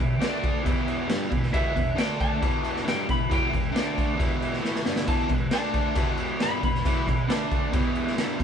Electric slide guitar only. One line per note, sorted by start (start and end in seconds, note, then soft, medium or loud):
0.00 1.06 G5 loud
1.54 1.97 E5 loud
1.98 2.20 G5 medium
2.21 2.85 A5 loud
2.89 3.09 G5 medium
3.11 3.31 B5 medium
3.33 4.61 G5 loud
5.09 5.30 A5 loud
5.53 6.17 A5 loud
6.43 6.63 B5 loud
6.65 7.49 B5 loud